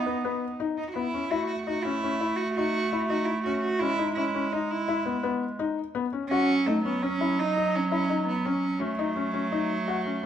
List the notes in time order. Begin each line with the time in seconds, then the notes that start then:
Already playing: B3 D#4
0.06 B3
0.25 B3
0.60 D#4
0.77 D#4
0.89 F#4
0.94 B3 E4
1.14 C#4
1.30 A3 E4 F#4
1.47 F#4
1.66 D#4 F#4
1.83 C#4 E4
2.04 C#4
2.21 E4
2.36 F#4
2.56 D#4 F#4
2.93 E4
3.09 D#4 F#4
3.25 E4
3.44 C#4 F#4
3.61 F#4
3.80 G#3 C#4 E4
3.99 D#4
4.15 C#4 E4
4.35 C#4
4.52 D#4
4.71 E4
4.88 E4
5.06 B3
5.23 B3
5.59 D#4
5.95 B3
6.13 C#4
6.29 F#3 C#4 F#4
6.67 A3 D#4
6.84 B3 C#4
7.03 C#4
7.21 E4
7.39 D#4
7.56 D#4
7.75 C#4
7.92 C#4 E4
8.10 D#4
8.28 B3
8.45 C#4
8.80 F#3 A3 C#4
8.99 D#4
9.16 C#4
9.33 C#4
9.52 D#4
9.88 F#4
10.06 C#4